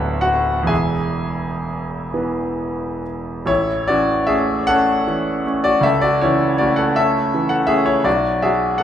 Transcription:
0.00 0.66 D1 medium
0.00 0.66 D2 medium
0.00 0.66 F#3 medium
0.00 0.66 B3 medium
0.00 0.67 D4 medium
0.00 0.19 B4 medium
0.00 0.19 F#5 medium
0.00 0.22 B5 medium
0.21 0.66 F#4 medium
0.21 0.69 F#5 medium
0.63 3.44 E1 medium
0.63 3.42 E2 medium
0.67 3.00 G#4 medium
0.67 3.00 E5 medium
0.67 3.04 G#5 medium
2.14 3.46 E3 soft
2.14 3.46 B3 medium
3.46 5.78 A1 medium
3.46 3.86 E4 medium
3.46 3.88 C#5 medium
3.88 4.25 E3 soft
3.88 4.26 C#4 soft
3.88 4.26 F#4 medium
3.88 4.28 D5 medium
4.27 4.65 A3 soft
4.27 4.65 C#4 soft
4.27 4.65 G#4 medium
4.27 4.67 E5 medium
4.67 5.04 A3 soft
4.67 5.04 C#4 medium
4.67 5.61 A4 medium
4.67 5.64 F#5 medium
5.08 5.42 E3 soft
5.08 5.42 C#4 soft
5.46 5.80 A3 soft
5.46 5.81 C#4 soft
5.64 5.82 F#4 medium
5.64 5.83 D5 medium
5.81 8.01 C#2 medium
5.81 6.02 A4 medium
5.81 6.02 E5 medium
6.01 6.21 F#4 medium
6.01 6.21 D5 medium
6.21 6.57 E3 soft
6.21 6.57 C#4 medium
6.21 6.57 E4 medium
6.21 6.60 C#5 medium
6.58 6.94 A3 soft
6.58 6.94 C#4 medium
6.58 6.77 F#4 medium
6.58 6.78 D5 medium
6.76 6.95 A4 medium
6.76 6.96 F#5 medium
6.96 7.30 A3 soft
6.96 7.30 C#4 medium
6.96 7.47 A4 medium
6.96 7.50 E5 medium
7.34 7.66 E3 soft
7.34 7.67 C#4 soft
7.49 7.67 A4 medium
7.49 7.68 F#5 medium
7.67 8.03 A3 soft
7.67 8.03 C#4 medium
7.67 7.86 G#4 medium
7.67 7.86 E5 medium
7.86 8.05 E4 medium
7.86 8.05 C#5 medium
8.04 8.83 B1 medium
8.04 8.41 F#4 medium
8.04 8.43 D5 medium
8.42 8.77 F#3 soft
8.42 8.78 F#4 soft
8.42 8.78 G#4 medium
8.42 8.80 E5 medium
8.78 8.83 A4 medium
8.78 8.83 F#5 medium

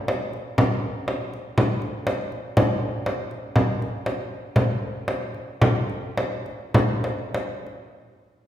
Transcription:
0.08 frame drum medium
0.33 frame drum soft
0.58 frame drum medium
1.08 frame drum medium
1.33 frame drum soft
1.58 frame drum medium
1.82 frame drum soft
2.07 frame drum medium
2.32 frame drum soft
2.57 frame drum medium
3.06 frame drum soft
3.31 frame drum soft
3.56 frame drum medium
3.82 frame drum soft
4.06 frame drum soft
4.56 frame drum medium
5.08 frame drum soft
5.34 frame drum soft
5.62 frame drum medium
5.90 frame drum soft
6.17 frame drum medium
6.46 frame drum soft
6.74 frame drum medium
7.04 frame drum soft
7.35 frame drum soft
7.66 frame drum soft

